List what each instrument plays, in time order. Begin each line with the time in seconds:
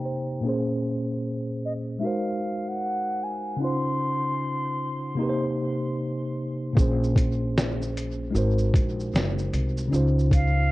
Already playing: tine electric piano C3 A#3 D#4 G4 C5 G5 A#5
0.05 tine electric piano C5
0.41 tine electric piano A#2 A#3 C#4
0.47 tine electric piano G#4 C5
1.65 flute D#5
1.99 tine electric piano G#3 D#4 F#4, flute E5
2.05 tine electric piano A#4 C5, flute F5
2.68 flute F#5
3.24 flute G#5
3.57 tine electric piano C#3 C#4 D#4
3.62 tine electric piano F4 C5, flute C6
5.15 tine electric piano C3 A#3 D#4
5.21 tine electric piano G4 B4
5.29 tine electric piano C5
6.73 tine electric piano A#2 A#3 C#4, kick
6.77 upright bass A#1, tine electric piano G#4 C5, shaker
7.04 shaker
7.16 kick, closed hi-hat, shaker
7.58 snare, shaker
7.82 shaker
7.97 closed hi-hat, shaker
8.31 tine electric piano G#3 D#4 F#4
8.35 upright bass G#1, tine electric piano A#4 C5, shaker
8.58 shaker
8.74 upright bass A#1, kick, closed hi-hat, shaker
9.00 shaker
9.14 upright bass F#1, snare, shaker
9.39 shaker
9.53 upright bass C2, closed hi-hat, shaker
9.77 shaker
9.88 tine electric piano C#3 C#4 D#4
9.92 upright bass C#2, tine electric piano F4 C5, shaker
10.19 shaker
10.31 flute F5, kick, closed hi-hat, shaker